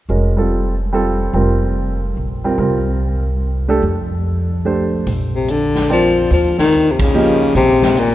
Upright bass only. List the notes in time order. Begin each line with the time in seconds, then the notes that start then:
0.09 F1
1.33 F1
2.17 A#1
2.58 C2
3.82 F2
5.07 A#1
6.31 D#2
7.55 A#1